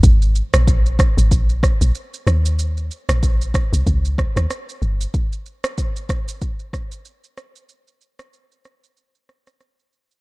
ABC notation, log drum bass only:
X:1
M:4/4
L:1/16
Q:"Swing 16ths" 1/4=94
K:Ab
V:1 name="Log drum bass" clef=bass
A,,,3 B,,,4 A,,, B,,,3 B,,, z2 E,,2- | E,,3 B,,,4 C,, D,,3 E,, z2 G,,,2 | z16 | z16 |]